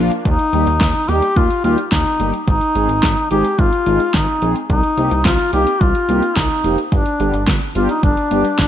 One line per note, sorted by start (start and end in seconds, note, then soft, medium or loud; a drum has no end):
0.00 0.10 A#1 loud
0.00 0.12 F3 medium
0.00 0.12 A#3 medium
0.00 0.24 A#3 medium
0.00 0.12 D4 medium
0.00 0.24 D4 medium
0.00 0.11 F4 loud
0.00 0.24 F4 medium
0.11 closed hi-hat medium
0.25 0.38 D#2 loud
0.25 1.10 D#4 loud
0.25 kick loud
0.25 closed hi-hat medium
0.39 closed hi-hat medium
0.53 0.66 D#2 loud
0.53 0.67 G3 medium
0.53 0.67 A#3 medium
0.53 0.67 D#4 medium
0.53 0.67 G4 medium
0.53 closed hi-hat medium
0.67 0.80 D#2 loud
0.67 closed hi-hat medium
0.81 0.94 D#2 loud
0.81 kick loud
0.81 snare loud
0.81 closed hi-hat medium
0.95 closed hi-hat soft
1.09 1.21 D#2 loud
1.09 1.23 G3 medium
1.09 1.23 A#3 medium
1.09 1.23 D#4 medium
1.09 1.23 G4 medium
1.09 1.38 G4 loud
1.09 closed hi-hat medium
1.22 closed hi-hat medium
1.36 1.49 D#2 loud
1.36 1.64 F4 loud
1.36 kick loud
1.36 closed hi-hat medium
1.50 closed hi-hat medium
1.64 1.77 D#2 loud
1.64 1.78 G3 medium
1.64 1.78 A#3 medium
1.64 1.78 D#4 medium
1.64 1.77 F4 medium
1.64 1.78 G4 medium
1.64 closed hi-hat medium
1.78 closed hi-hat medium
1.92 2.05 D#2 loud
1.92 2.31 D#4 medium
1.92 kick loud
1.92 snare loud
1.92 closed hi-hat medium
2.06 closed hi-hat medium
2.20 2.32 G1 medium
2.20 2.34 G3 medium
2.20 2.34 A#3 medium
2.20 2.34 D#4 medium
2.20 2.34 G4 medium
2.20 closed hi-hat medium
2.34 closed hi-hat soft
2.47 2.60 G#1 loud
2.47 3.27 D#4 loud
2.47 kick loud
2.47 closed hi-hat medium
2.61 closed hi-hat medium
2.75 2.88 G#1 loud
2.75 2.89 G#3 medium
2.75 2.89 C4 medium
2.75 2.89 D#4 medium
2.75 2.89 G#4 medium
2.75 closed hi-hat medium
2.89 3.02 G#1 medium
2.89 closed hi-hat medium
3.03 3.16 G#1 loud
3.03 kick loud
3.03 snare loud
3.03 closed hi-hat medium
3.17 closed hi-hat soft
3.31 3.44 G#1 loud
3.31 3.45 G#3 medium
3.31 3.45 C4 medium
3.31 3.45 D#4 medium
3.31 3.60 G4 loud
3.31 3.45 G#4 medium
3.31 closed hi-hat medium
3.45 closed hi-hat medium
3.59 3.71 G#1 loud
3.59 4.14 F4 loud
3.59 kick loud
3.59 closed hi-hat medium
3.73 closed hi-hat medium
3.86 3.99 G#1 loud
3.86 4.00 G#3 medium
3.86 4.00 C4 medium
3.86 4.00 D#4 medium
3.86 4.00 F4 medium
3.86 closed hi-hat medium
4.00 closed hi-hat soft
4.14 4.27 G#1 loud
4.14 4.53 D#4 medium
4.14 kick loud
4.14 snare loud
4.14 closed hi-hat medium
4.28 closed hi-hat medium
4.42 4.55 A#1 medium
4.42 4.56 G#3 medium
4.42 4.56 C4 medium
4.42 4.56 D#4 medium
4.42 4.56 G#4 medium
4.42 closed hi-hat medium
4.56 closed hi-hat soft
4.70 4.82 C2 loud
4.70 5.21 D#4 medium
4.70 kick loud
4.70 closed hi-hat medium
4.83 closed hi-hat medium
4.97 5.10 C2 loud
4.97 5.12 A#3 medium
4.97 5.12 C4 medium
4.97 5.12 D#4 medium
4.97 5.12 G4 medium
4.97 closed hi-hat medium
5.11 5.24 C2 loud
5.11 closed hi-hat medium
5.25 5.38 C2 loud
5.25 5.51 F4 medium
5.25 kick loud
5.25 snare loud
5.25 closed hi-hat medium
5.39 closed hi-hat soft
5.53 5.66 C2 loud
5.53 5.67 A#3 medium
5.53 5.67 C4 medium
5.53 5.67 D#4 medium
5.53 5.67 G4 medium
5.53 5.82 G4 medium
5.53 closed hi-hat medium
5.67 closed hi-hat medium
5.81 5.94 C2 loud
5.81 6.38 F4 medium
5.81 kick loud
5.81 closed hi-hat medium
5.95 closed hi-hat medium
6.09 6.21 C2 loud
6.09 6.23 A#3 medium
6.09 6.23 C4 medium
6.09 6.23 D#4 medium
6.09 6.23 G4 medium
6.09 closed hi-hat medium
6.23 closed hi-hat soft
6.36 6.49 C2 loud
6.36 6.78 D#4 medium
6.36 kick loud
6.36 snare loud
6.36 closed hi-hat medium
6.50 closed hi-hat medium
6.64 6.77 F1 medium
6.64 6.78 A#3 medium
6.64 6.78 C4 medium
6.64 6.78 D#4 medium
6.64 6.78 G4 medium
6.64 closed hi-hat medium
6.78 closed hi-hat medium
6.92 7.05 G1 loud
6.92 7.45 D4 medium
6.92 kick loud
6.92 closed hi-hat medium
7.06 closed hi-hat medium
7.20 7.33 G1 loud
7.20 7.34 G3 medium
7.20 7.34 B3 medium
7.20 7.34 D4 medium
7.20 7.34 G4 medium
7.20 closed hi-hat medium
7.34 7.46 G1 loud
7.34 closed hi-hat medium
7.47 7.60 G1 loud
7.47 kick loud
7.47 snare loud
7.47 closed hi-hat medium
7.62 closed hi-hat soft
7.75 7.88 G1 loud
7.75 7.89 G3 medium
7.75 7.89 B3 medium
7.75 7.89 D4 medium
7.75 7.88 F4 medium
7.75 7.89 G4 medium
7.75 closed hi-hat medium
7.89 8.02 D#4 medium
7.89 closed hi-hat medium
8.03 8.16 G1 medium
8.03 8.55 D4 medium
8.03 kick loud
8.03 closed hi-hat medium
8.17 closed hi-hat medium
8.31 8.44 G1 loud
8.31 8.45 G3 medium
8.31 8.45 B3 medium
8.31 8.45 D4 medium
8.31 8.45 G4 medium
8.31 closed hi-hat medium
8.45 closed hi-hat soft
8.59 8.68 G1 loud
8.59 8.68 D4 medium
8.59 kick loud
8.59 snare loud
8.59 closed hi-hat medium